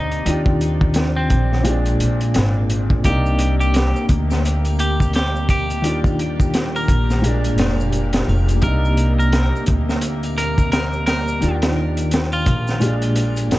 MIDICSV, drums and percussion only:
0, 0, Header, 1, 2, 480
1, 0, Start_track
1, 0, Key_signature, -3, "minor"
1, 0, Tempo, 697674
1, 179, Time_signature, 4, 2, 24, 8
1, 9349, End_track
2, 0, Start_track
2, 0, Title_t, "Drums"
2, 79, Note_on_c, 9, 42, 42
2, 148, Note_off_c, 9, 42, 0
2, 179, Note_on_c, 9, 42, 92
2, 248, Note_off_c, 9, 42, 0
2, 315, Note_on_c, 9, 36, 101
2, 384, Note_off_c, 9, 36, 0
2, 419, Note_on_c, 9, 42, 62
2, 488, Note_off_c, 9, 42, 0
2, 558, Note_on_c, 9, 36, 93
2, 627, Note_off_c, 9, 36, 0
2, 645, Note_on_c, 9, 42, 82
2, 660, Note_on_c, 9, 38, 105
2, 714, Note_off_c, 9, 42, 0
2, 728, Note_off_c, 9, 38, 0
2, 893, Note_on_c, 9, 42, 58
2, 897, Note_on_c, 9, 36, 101
2, 962, Note_off_c, 9, 42, 0
2, 966, Note_off_c, 9, 36, 0
2, 1050, Note_on_c, 9, 38, 36
2, 1118, Note_off_c, 9, 38, 0
2, 1133, Note_on_c, 9, 42, 82
2, 1201, Note_off_c, 9, 42, 0
2, 1277, Note_on_c, 9, 42, 41
2, 1346, Note_off_c, 9, 42, 0
2, 1377, Note_on_c, 9, 42, 68
2, 1446, Note_off_c, 9, 42, 0
2, 1518, Note_on_c, 9, 42, 40
2, 1587, Note_off_c, 9, 42, 0
2, 1612, Note_on_c, 9, 42, 85
2, 1623, Note_on_c, 9, 38, 116
2, 1680, Note_off_c, 9, 42, 0
2, 1691, Note_off_c, 9, 38, 0
2, 1855, Note_on_c, 9, 42, 68
2, 1924, Note_off_c, 9, 42, 0
2, 1996, Note_on_c, 9, 36, 91
2, 2064, Note_off_c, 9, 36, 0
2, 2092, Note_on_c, 9, 42, 81
2, 2095, Note_on_c, 9, 36, 105
2, 2103, Note_on_c, 9, 82, 62
2, 2161, Note_off_c, 9, 42, 0
2, 2164, Note_off_c, 9, 36, 0
2, 2171, Note_off_c, 9, 82, 0
2, 2244, Note_on_c, 9, 82, 39
2, 2312, Note_off_c, 9, 82, 0
2, 2330, Note_on_c, 9, 42, 73
2, 2399, Note_off_c, 9, 42, 0
2, 2483, Note_on_c, 9, 82, 73
2, 2552, Note_off_c, 9, 82, 0
2, 2572, Note_on_c, 9, 42, 84
2, 2585, Note_on_c, 9, 82, 70
2, 2590, Note_on_c, 9, 38, 107
2, 2641, Note_off_c, 9, 42, 0
2, 2654, Note_off_c, 9, 82, 0
2, 2659, Note_off_c, 9, 38, 0
2, 2724, Note_on_c, 9, 82, 40
2, 2793, Note_off_c, 9, 82, 0
2, 2813, Note_on_c, 9, 42, 63
2, 2815, Note_on_c, 9, 36, 94
2, 2882, Note_off_c, 9, 42, 0
2, 2884, Note_off_c, 9, 36, 0
2, 2963, Note_on_c, 9, 82, 75
2, 2969, Note_on_c, 9, 38, 48
2, 3032, Note_off_c, 9, 82, 0
2, 3038, Note_off_c, 9, 38, 0
2, 3062, Note_on_c, 9, 82, 63
2, 3065, Note_on_c, 9, 42, 90
2, 3130, Note_off_c, 9, 82, 0
2, 3134, Note_off_c, 9, 42, 0
2, 3197, Note_on_c, 9, 42, 43
2, 3207, Note_on_c, 9, 82, 35
2, 3210, Note_on_c, 9, 81, 71
2, 3266, Note_off_c, 9, 42, 0
2, 3276, Note_off_c, 9, 82, 0
2, 3279, Note_off_c, 9, 81, 0
2, 3297, Note_on_c, 9, 42, 61
2, 3308, Note_on_c, 9, 81, 67
2, 3365, Note_off_c, 9, 42, 0
2, 3377, Note_off_c, 9, 81, 0
2, 3441, Note_on_c, 9, 36, 92
2, 3450, Note_on_c, 9, 82, 74
2, 3510, Note_off_c, 9, 36, 0
2, 3519, Note_off_c, 9, 82, 0
2, 3532, Note_on_c, 9, 42, 85
2, 3548, Note_on_c, 9, 82, 69
2, 3552, Note_on_c, 9, 38, 105
2, 3601, Note_off_c, 9, 42, 0
2, 3616, Note_off_c, 9, 82, 0
2, 3621, Note_off_c, 9, 38, 0
2, 3686, Note_on_c, 9, 82, 40
2, 3754, Note_off_c, 9, 82, 0
2, 3776, Note_on_c, 9, 36, 89
2, 3776, Note_on_c, 9, 42, 64
2, 3783, Note_on_c, 9, 81, 72
2, 3845, Note_off_c, 9, 36, 0
2, 3845, Note_off_c, 9, 42, 0
2, 3851, Note_off_c, 9, 81, 0
2, 3922, Note_on_c, 9, 42, 38
2, 3924, Note_on_c, 9, 82, 83
2, 3991, Note_off_c, 9, 42, 0
2, 3993, Note_off_c, 9, 82, 0
2, 4017, Note_on_c, 9, 42, 86
2, 4021, Note_on_c, 9, 82, 62
2, 4086, Note_off_c, 9, 42, 0
2, 4090, Note_off_c, 9, 82, 0
2, 4157, Note_on_c, 9, 36, 92
2, 4168, Note_on_c, 9, 82, 38
2, 4226, Note_off_c, 9, 36, 0
2, 4237, Note_off_c, 9, 82, 0
2, 4260, Note_on_c, 9, 42, 75
2, 4329, Note_off_c, 9, 42, 0
2, 4401, Note_on_c, 9, 36, 92
2, 4405, Note_on_c, 9, 82, 66
2, 4470, Note_off_c, 9, 36, 0
2, 4474, Note_off_c, 9, 82, 0
2, 4497, Note_on_c, 9, 42, 88
2, 4505, Note_on_c, 9, 38, 106
2, 4508, Note_on_c, 9, 82, 55
2, 4566, Note_off_c, 9, 42, 0
2, 4574, Note_off_c, 9, 38, 0
2, 4577, Note_off_c, 9, 82, 0
2, 4648, Note_on_c, 9, 82, 40
2, 4649, Note_on_c, 9, 81, 78
2, 4717, Note_off_c, 9, 82, 0
2, 4718, Note_off_c, 9, 81, 0
2, 4736, Note_on_c, 9, 36, 85
2, 4738, Note_on_c, 9, 42, 65
2, 4805, Note_off_c, 9, 36, 0
2, 4807, Note_off_c, 9, 42, 0
2, 4887, Note_on_c, 9, 38, 38
2, 4887, Note_on_c, 9, 82, 73
2, 4955, Note_off_c, 9, 82, 0
2, 4956, Note_off_c, 9, 38, 0
2, 4980, Note_on_c, 9, 42, 82
2, 4985, Note_on_c, 9, 82, 68
2, 5048, Note_off_c, 9, 42, 0
2, 5054, Note_off_c, 9, 82, 0
2, 5121, Note_on_c, 9, 42, 46
2, 5127, Note_on_c, 9, 82, 41
2, 5189, Note_off_c, 9, 42, 0
2, 5196, Note_off_c, 9, 82, 0
2, 5214, Note_on_c, 9, 42, 72
2, 5225, Note_on_c, 9, 38, 111
2, 5229, Note_on_c, 9, 81, 74
2, 5283, Note_off_c, 9, 42, 0
2, 5294, Note_off_c, 9, 38, 0
2, 5297, Note_off_c, 9, 81, 0
2, 5368, Note_on_c, 9, 82, 73
2, 5436, Note_off_c, 9, 82, 0
2, 5452, Note_on_c, 9, 42, 57
2, 5468, Note_on_c, 9, 82, 66
2, 5521, Note_off_c, 9, 42, 0
2, 5537, Note_off_c, 9, 82, 0
2, 5592, Note_on_c, 9, 42, 70
2, 5602, Note_on_c, 9, 38, 95
2, 5611, Note_on_c, 9, 82, 35
2, 5661, Note_off_c, 9, 42, 0
2, 5671, Note_off_c, 9, 38, 0
2, 5680, Note_off_c, 9, 82, 0
2, 5705, Note_on_c, 9, 81, 74
2, 5773, Note_off_c, 9, 81, 0
2, 5837, Note_on_c, 9, 42, 53
2, 5849, Note_on_c, 9, 82, 83
2, 5906, Note_off_c, 9, 42, 0
2, 5918, Note_off_c, 9, 82, 0
2, 5928, Note_on_c, 9, 42, 79
2, 5934, Note_on_c, 9, 36, 108
2, 5947, Note_on_c, 9, 82, 57
2, 5997, Note_off_c, 9, 42, 0
2, 6003, Note_off_c, 9, 36, 0
2, 6016, Note_off_c, 9, 82, 0
2, 6089, Note_on_c, 9, 82, 41
2, 6158, Note_off_c, 9, 82, 0
2, 6173, Note_on_c, 9, 42, 66
2, 6242, Note_off_c, 9, 42, 0
2, 6330, Note_on_c, 9, 82, 69
2, 6399, Note_off_c, 9, 82, 0
2, 6415, Note_on_c, 9, 42, 84
2, 6420, Note_on_c, 9, 38, 122
2, 6428, Note_on_c, 9, 82, 56
2, 6484, Note_off_c, 9, 42, 0
2, 6489, Note_off_c, 9, 38, 0
2, 6497, Note_off_c, 9, 82, 0
2, 6575, Note_on_c, 9, 82, 37
2, 6644, Note_off_c, 9, 82, 0
2, 6648, Note_on_c, 9, 42, 66
2, 6660, Note_on_c, 9, 36, 98
2, 6717, Note_off_c, 9, 42, 0
2, 6729, Note_off_c, 9, 36, 0
2, 6807, Note_on_c, 9, 38, 51
2, 6810, Note_on_c, 9, 82, 70
2, 6875, Note_off_c, 9, 38, 0
2, 6879, Note_off_c, 9, 82, 0
2, 6889, Note_on_c, 9, 42, 88
2, 6904, Note_on_c, 9, 82, 63
2, 6958, Note_off_c, 9, 42, 0
2, 6973, Note_off_c, 9, 82, 0
2, 7038, Note_on_c, 9, 42, 45
2, 7048, Note_on_c, 9, 81, 73
2, 7049, Note_on_c, 9, 82, 39
2, 7106, Note_off_c, 9, 42, 0
2, 7117, Note_off_c, 9, 81, 0
2, 7118, Note_off_c, 9, 82, 0
2, 7139, Note_on_c, 9, 42, 70
2, 7142, Note_on_c, 9, 81, 79
2, 7208, Note_off_c, 9, 42, 0
2, 7211, Note_off_c, 9, 81, 0
2, 7278, Note_on_c, 9, 36, 94
2, 7280, Note_on_c, 9, 82, 71
2, 7347, Note_off_c, 9, 36, 0
2, 7349, Note_off_c, 9, 82, 0
2, 7375, Note_on_c, 9, 42, 91
2, 7382, Note_on_c, 9, 82, 57
2, 7384, Note_on_c, 9, 38, 114
2, 7444, Note_off_c, 9, 42, 0
2, 7451, Note_off_c, 9, 82, 0
2, 7453, Note_off_c, 9, 38, 0
2, 7518, Note_on_c, 9, 82, 33
2, 7586, Note_off_c, 9, 82, 0
2, 7613, Note_on_c, 9, 42, 76
2, 7617, Note_on_c, 9, 81, 79
2, 7620, Note_on_c, 9, 38, 101
2, 7682, Note_off_c, 9, 42, 0
2, 7686, Note_off_c, 9, 81, 0
2, 7689, Note_off_c, 9, 38, 0
2, 7760, Note_on_c, 9, 82, 79
2, 7829, Note_off_c, 9, 82, 0
2, 7856, Note_on_c, 9, 42, 59
2, 7856, Note_on_c, 9, 82, 61
2, 7924, Note_off_c, 9, 82, 0
2, 7925, Note_off_c, 9, 42, 0
2, 7994, Note_on_c, 9, 42, 75
2, 8001, Note_on_c, 9, 38, 118
2, 8002, Note_on_c, 9, 82, 39
2, 8063, Note_off_c, 9, 42, 0
2, 8069, Note_off_c, 9, 38, 0
2, 8071, Note_off_c, 9, 82, 0
2, 8235, Note_on_c, 9, 42, 68
2, 8242, Note_on_c, 9, 82, 74
2, 8304, Note_off_c, 9, 42, 0
2, 8311, Note_off_c, 9, 82, 0
2, 8334, Note_on_c, 9, 42, 82
2, 8337, Note_on_c, 9, 82, 58
2, 8351, Note_on_c, 9, 38, 118
2, 8402, Note_off_c, 9, 42, 0
2, 8405, Note_off_c, 9, 82, 0
2, 8419, Note_off_c, 9, 38, 0
2, 8477, Note_on_c, 9, 82, 34
2, 8478, Note_on_c, 9, 81, 81
2, 8546, Note_off_c, 9, 81, 0
2, 8546, Note_off_c, 9, 82, 0
2, 8573, Note_on_c, 9, 42, 68
2, 8575, Note_on_c, 9, 36, 92
2, 8641, Note_off_c, 9, 42, 0
2, 8644, Note_off_c, 9, 36, 0
2, 8721, Note_on_c, 9, 82, 81
2, 8730, Note_on_c, 9, 38, 39
2, 8790, Note_off_c, 9, 82, 0
2, 8799, Note_off_c, 9, 38, 0
2, 8811, Note_on_c, 9, 82, 64
2, 8818, Note_on_c, 9, 42, 84
2, 8880, Note_off_c, 9, 82, 0
2, 8886, Note_off_c, 9, 42, 0
2, 8956, Note_on_c, 9, 42, 46
2, 8958, Note_on_c, 9, 82, 39
2, 9025, Note_off_c, 9, 42, 0
2, 9027, Note_off_c, 9, 82, 0
2, 9050, Note_on_c, 9, 81, 69
2, 9051, Note_on_c, 9, 42, 75
2, 9119, Note_off_c, 9, 81, 0
2, 9120, Note_off_c, 9, 42, 0
2, 9194, Note_on_c, 9, 82, 77
2, 9198, Note_on_c, 9, 42, 42
2, 9263, Note_off_c, 9, 82, 0
2, 9267, Note_off_c, 9, 42, 0
2, 9295, Note_on_c, 9, 42, 61
2, 9302, Note_on_c, 9, 38, 87
2, 9302, Note_on_c, 9, 82, 68
2, 9349, Note_off_c, 9, 38, 0
2, 9349, Note_off_c, 9, 42, 0
2, 9349, Note_off_c, 9, 82, 0
2, 9349, End_track
0, 0, End_of_file